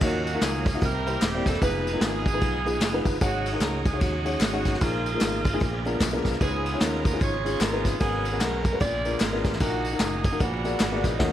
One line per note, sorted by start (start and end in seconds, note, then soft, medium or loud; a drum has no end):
0.01 0.35 D#2 loud
0.01 0.80 D#3 medium
0.01 0.62 D#3 medium
0.01 0.80 F#3 medium
0.01 0.26 A#3 medium
0.01 0.80 A#3 medium
0.01 0.78 A#3 medium
0.01 0.80 C#4 medium
0.01 0.78 C#4 medium
0.01 0.26 D#4 medium
0.01 0.26 F4 medium
0.01 0.26 F#4 medium
0.01 0.40 F#4 medium
0.01 0.26 C#5 medium
0.01 0.80 F5 medium
0.01 kick loud
0.01 crash loud
0.01 tambourine medium
0.26 ride medium
0.26 tambourine medium
0.34 0.62 A#3 medium
0.34 0.62 D#4 medium
0.34 0.62 F4 medium
0.34 0.62 F#4 medium
0.34 0.62 A#4 medium
0.41 0.76 C#2 medium
0.41 0.67 G#4 loud
0.41 snare loud
0.41 clap loud
0.41 ride medium
0.41 tambourine medium
0.65 0.82 G#4 medium
0.65 kick medium
0.65 ride medium
0.65 tambourine medium
0.74 0.82 A#3 medium
0.74 0.82 D#4 medium
0.74 0.82 F4 medium
0.74 0.82 F#4 medium
0.74 0.82 D#5 medium
0.81 1.16 C2 loud
0.81 1.43 C3 medium
0.81 1.60 E3 medium
0.81 1.60 G3 medium
0.81 1.61 A#3 medium
0.81 1.60 C4 medium
0.81 1.58 E4 medium
0.81 0.88 F#4 medium
0.81 1.22 G4 medium
0.81 1.23 A#4 loud
0.81 kick loud
0.81 ride medium
0.81 tambourine medium
0.87 1.63 G4 medium
1.06 1.21 A#3 medium
1.06 1.22 C4 medium
1.06 1.22 E4 medium
1.06 1.22 G4 medium
1.06 1.22 C5 medium
1.06 ride medium
1.06 tambourine medium
1.21 1.43 D#1 medium
1.21 1.47 G4 loud
1.21 snare loud
1.21 clap medium
1.21 ride medium
1.21 tambourine medium
1.34 1.54 A#3 medium
1.34 1.54 C4 medium
1.34 1.54 E4 medium
1.34 1.54 G4 medium
1.34 1.54 D5 medium
1.46 1.59 E1 medium
1.46 1.62 A4 loud
1.46 kick medium
1.46 snare soft
1.46 ride medium
1.46 tambourine medium
1.54 snare soft
1.61 1.96 F1 loud
1.61 3.19 F3 medium
1.61 1.86 G#3 medium
1.61 3.19 G#3 medium
1.61 1.86 B3 medium
1.61 3.19 B3 medium
1.61 1.86 D#4 medium
1.61 2.01 D#4 medium
1.61 3.19 D#4 medium
1.61 1.86 F4 medium
1.61 2.01 G#4 medium
1.61 3.19 G#4 medium
1.61 1.86 B4 medium
1.61 2.00 B4 loud
1.61 kick loud
1.61 ride medium
1.61 tambourine medium
1.87 ride medium
1.87 tambourine medium
1.93 2.21 G#3 medium
1.93 2.21 B3 medium
1.93 2.22 D#4 medium
1.93 2.22 F4 medium
1.93 2.22 A#4 medium
2.01 2.42 G#1 medium
2.01 3.02 B3 medium
2.01 3.02 D#4 medium
2.01 3.02 G#4 loud
2.01 snare loud
2.01 clap medium
2.01 ride medium
2.01 tambourine medium
2.25 kick medium
2.25 ride medium
2.25 tambourine medium
2.33 2.53 G#3 medium
2.33 2.53 B3 medium
2.33 2.53 D#4 medium
2.33 2.54 F4 medium
2.33 2.54 B4 medium
2.41 2.81 B1 loud
2.41 kick loud
2.41 ride medium
2.41 tambourine medium
2.65 2.81 G#3 medium
2.65 2.81 B3 medium
2.65 2.81 D#4 medium
2.65 2.81 F4 medium
2.65 2.81 G#4 loud
2.65 ride medium
2.65 tambourine medium
2.80 3.02 F#1 medium
2.80 snare loud
2.80 clap medium
2.80 ride medium
2.80 tambourine medium
2.93 3.13 G#3 loud
2.93 3.13 B3 medium
2.93 3.13 D#4 medium
2.93 3.14 F4 medium
2.93 3.14 B4 loud
3.05 3.19 G1 medium
3.05 kick medium
3.05 ride medium
3.05 tambourine medium
3.21 3.55 G#1 loud
3.21 3.82 G#2 medium
3.21 4.78 F#3 medium
3.21 3.45 G#3 medium
3.21 4.78 G#3 medium
3.21 3.46 C#4 medium
3.21 4.78 C#4 medium
3.21 3.98 C#4 medium
3.21 4.78 D#4 medium
3.21 3.46 D#4 medium
3.21 3.98 D#4 medium
3.21 3.59 F#4 medium
3.21 3.46 F#4 medium
3.21 4.78 G#4 medium
3.21 3.46 C#5 medium
3.21 kick loud
3.21 ride medium
3.21 tambourine medium
3.46 ride medium
3.46 tambourine medium
3.53 3.81 G#3 medium
3.53 3.81 C#4 medium
3.53 3.81 D#4 medium
3.53 3.81 F#4 medium
3.53 3.82 A#4 medium
3.60 4.01 C#2 loud
3.60 3.84 A#4 loud
3.60 snare loud
3.60 clap loud
3.60 ride medium
3.60 tambourine loud
3.85 4.01 G#4 medium
3.85 kick loud
3.85 ride medium
3.85 tambourine medium
3.93 4.13 G#3 medium
3.93 4.13 C#4 medium
3.93 4.13 D#4 medium
3.93 4.13 F#4 medium
3.93 4.14 C#5 medium
4.01 4.35 D#2 medium
4.01 4.77 C#4 medium
4.01 4.77 D#4 medium
4.01 4.81 F#4 medium
4.01 kick loud
4.01 ride medium
4.01 tambourine medium
4.25 4.41 G#3 medium
4.25 4.41 C#4 medium
4.25 4.41 D#4 medium
4.25 4.41 F#4 medium
4.25 4.41 C#5 medium
4.25 ride medium
4.25 tambourine soft
4.40 4.75 G#1 medium
4.40 snare loud
4.40 clap loud
4.40 ride medium
4.40 tambourine loud
4.53 4.73 G#3 medium
4.53 4.73 C#4 medium
4.53 4.73 D#4 medium
4.53 4.73 F#4 medium
4.53 4.73 C#5 loud
4.65 kick medium
4.65 snare soft
4.65 ride medium
4.65 tambourine medium
4.74 snare soft
4.80 5.15 A#1 loud
4.80 5.42 A#2 medium
4.80 5.59 F3 medium
4.80 5.05 G#3 medium
4.80 5.59 G#3 medium
4.80 5.98 G#3 medium
4.80 5.05 A#3 medium
4.80 5.59 A#3 medium
4.80 5.59 D#4 medium
4.80 5.05 D#4 medium
4.80 5.05 F4 medium
4.80 6.01 F4 loud
4.80 5.59 G#4 medium
4.80 5.06 A#4 medium
4.80 kick loud
4.80 ride medium
4.80 tambourine medium
5.06 ride medium
5.06 tambourine medium
5.13 5.41 G#3 medium
5.13 5.41 A#3 medium
5.13 5.41 D#4 medium
5.13 5.42 F4 medium
5.13 5.42 A#4 medium
5.20 5.55 G#1 medium
5.20 snare loud
5.20 clap loud
5.20 ride medium
5.20 tambourine medium
5.44 kick loud
5.44 ride medium
5.44 tambourine medium
5.53 5.61 G#3 medium
5.53 5.61 A#3 medium
5.53 5.61 D#4 medium
5.53 5.62 F4 medium
5.53 5.61 G#4 loud
5.60 5.95 A#1 medium
5.60 6.22 A#2 medium
5.60 6.39 F3 medium
5.60 6.40 A#3 medium
5.60 6.38 B3 medium
5.60 6.40 D4 medium
5.60 6.39 G#4 medium
5.60 kick loud
5.60 ride medium
5.60 tambourine medium
5.85 6.01 G#3 medium
5.85 6.01 B3 medium
5.85 6.01 D4 medium
5.85 6.01 F4 medium
5.85 6.01 A#4 medium
5.85 ride medium
5.85 tambourine medium
5.99 6.21 B1 medium
5.99 kick medium
5.99 snare loud
5.99 clap loud
5.99 ride medium
5.99 tambourine loud
6.13 6.33 G#3 medium
6.13 6.33 B3 medium
6.13 6.33 D4 medium
6.13 6.33 F4 medium
6.13 6.33 A#4 medium
6.25 6.38 C2 medium
6.25 kick medium
6.25 snare soft
6.25 ride medium
6.25 tambourine medium
6.33 snare soft
6.40 6.75 C#2 loud
6.40 7.02 C#3 medium
6.40 7.97 F3 medium
6.40 6.65 G#3 medium
6.40 7.97 B3 medium
6.40 7.17 B3 medium
6.40 7.97 C#4 medium
6.40 6.65 C#4 medium
6.40 7.97 D#4 medium
6.40 6.66 D#4 medium
6.40 7.17 F4 medium
6.40 6.66 F4 medium
6.40 7.97 G#4 medium
6.40 6.78 G#4 loud
6.40 6.66 B4 medium
6.40 kick loud
6.40 ride medium
6.40 tambourine medium
6.66 ride medium
6.66 tambourine medium
6.73 7.01 G#3 medium
6.73 7.01 C#4 medium
6.73 7.01 D#4 medium
6.73 7.01 F4 medium
6.73 7.01 C#5 medium
6.80 7.15 D#2 medium
6.80 7.05 A#4 loud
6.80 snare loud
6.80 clap medium
6.80 ride medium
6.80 tambourine loud
7.05 7.20 A#4 medium
7.05 kick loud
7.05 ride medium
7.05 tambourine medium
7.13 7.33 G#3 medium
7.13 7.33 C#4 medium
7.13 7.33 D#4 medium
7.13 7.33 F4 medium
7.13 7.33 G#4 medium
7.20 7.55 G#1 medium
7.20 7.97 F4 medium
7.20 7.98 G#4 medium
7.20 7.61 C#5 loud
7.20 kick loud
7.20 ride medium
7.20 tambourine medium
7.44 7.60 G#3 medium
7.44 7.60 C#4 medium
7.44 7.61 D#4 medium
7.44 7.61 F4 medium
7.44 7.61 G#4 medium
7.44 ride medium
7.44 tambourine medium
7.60 7.95 G#1 medium
7.60 7.85 A#4 loud
7.60 snare loud
7.60 clap loud
7.60 ride medium
7.60 tambourine medium
7.72 7.92 G#3 medium
7.72 7.93 C#4 medium
7.72 7.93 D#4 medium
7.72 7.93 F4 medium
7.72 7.93 B4 medium
7.85 kick medium
7.85 snare soft
7.85 ride medium
7.85 tambourine medium
8.00 8.41 G#1 loud
8.00 8.61 G#2 medium
8.00 8.25 G#3 medium
8.00 8.79 G#3 medium
8.00 8.25 B3 medium
8.00 8.79 B3 medium
8.00 8.77 B3 medium
8.00 8.25 C#4 medium
8.00 8.79 C#4 medium
8.00 8.77 C#4 medium
8.00 8.79 F#4 medium
8.00 8.25 F#4 medium
8.00 8.38 G#4 loud
8.00 8.79 A#4 medium
8.00 8.25 A#4 medium
8.00 kick loud
8.00 ride medium
8.00 tambourine medium
8.25 ride medium
8.25 tambourine medium
8.32 8.61 G#3 medium
8.32 8.61 B3 medium
8.32 8.61 C#4 medium
8.32 8.61 F#4 medium
8.32 8.61 A#4 medium
8.40 8.75 B1 loud
8.40 8.64 A#4 loud
8.40 snare loud
8.40 clap medium
8.40 ride medium
8.40 tambourine medium
8.64 8.80 A#4 loud
8.64 kick loud
8.64 ride medium
8.64 tambourine medium
8.72 8.80 G#3 medium
8.72 8.81 B3 medium
8.72 8.81 C#4 medium
8.72 8.81 F#4 medium
8.72 8.81 B4 medium
8.80 9.15 A#1 loud
8.80 9.41 A#2 medium
8.80 9.59 G#3 medium
8.80 9.59 B3 medium
8.80 9.59 D4 medium
8.80 9.59 F4 medium
8.80 9.57 F4 medium
8.80 9.57 G#4 medium
8.80 9.59 A#4 medium
8.80 9.18 D5 loud
8.80 kick loud
8.80 ride medium
8.80 tambourine medium
9.05 9.21 G#3 medium
9.05 9.21 B3 medium
9.05 9.21 D4 medium
9.05 9.21 F4 medium
9.05 9.21 A#4 medium
9.05 ride medium
9.05 tambourine medium
9.19 9.42 G#1 medium
9.19 9.45 A#4 loud
9.19 snare loud
9.19 clap medium
9.19 ride loud
9.19 tambourine medium
9.32 9.52 G#3 medium
9.32 9.53 B3 medium
9.32 9.53 D4 medium
9.32 9.53 F4 medium
9.32 9.53 A#4 medium
9.44 9.58 A1 medium
9.44 kick medium
9.44 snare soft
9.44 ride medium
9.44 tambourine medium
9.53 snare soft
9.60 9.95 A#1 loud
9.60 10.21 A#2 medium
9.60 10.39 A#3 medium
9.60 10.37 A#3 medium
9.60 9.84 D#4 medium
9.60 10.39 D#4 medium
9.60 10.37 D#4 medium
9.60 10.39 F#4 medium
9.60 9.85 F#4 medium
9.60 9.98 F#4 loud
9.60 9.85 A#4 medium
9.60 kick loud
9.60 ride medium
9.60 tambourine medium
9.85 ride medium
9.85 tambourine medium
9.92 10.20 D#4 medium
9.92 10.21 F#4 medium
9.92 10.21 A#4 medium
9.99 10.34 F#1 loud
9.99 10.24 G#4 medium
9.99 snare loud
9.99 clap medium
9.99 ride medium
9.99 tambourine medium
10.23 10.40 G#4 loud
10.23 kick loud
10.23 ride medium
10.23 tambourine medium
10.32 10.40 D#4 medium
10.32 10.40 F#4 medium
10.32 10.41 A#4 medium
10.39 10.74 A#1 loud
10.39 11.01 A#2 medium
10.39 11.18 G#3 medium
10.39 11.18 B3 medium
10.39 11.17 B3 medium
10.39 11.18 D4 medium
10.39 11.17 D4 medium
10.39 11.18 F#4 medium
10.39 11.05 F#4 loud
10.39 10.46 A4 medium
10.39 kick loud
10.39 ride medium
10.39 tambourine medium
10.45 11.20 A#4 medium
10.64 10.80 B3 medium
10.64 10.80 F#4 medium
10.64 10.80 G#4 medium
10.64 10.80 A#4 medium
10.64 10.80 D5 medium
10.64 ride medium
10.64 tambourine medium
10.79 11.01 G#1 medium
10.79 snare loud
10.79 clap loud
10.79 ride medium
10.79 tambourine loud
10.92 11.12 B3 medium
10.92 11.12 F#4 medium
10.92 11.12 G#4 medium
10.92 11.13 A#4 medium
10.92 11.13 D5 medium
11.04 11.17 A#1 medium
11.04 11.32 F#3 medium
11.04 11.32 A#3 medium
11.04 11.32 D#4 medium
11.04 kick medium
11.04 snare soft
11.04 ride medium
11.04 tambourine medium
11.19 11.32 D#2 loud
11.19 11.32 D#3 medium
11.19 11.32 F#3 medium
11.19 11.32 C#4 loud
11.19 11.32 C#4 medium
11.19 11.32 D#4 medium
11.19 11.32 F4 loud
11.19 11.32 F4 medium
11.19 11.32 F#4 loud
11.19 11.32 A#4 loud
11.19 11.32 A#4 medium
11.19 11.32 D#5 loud
11.19 kick loud
11.19 snare loud
11.19 crash medium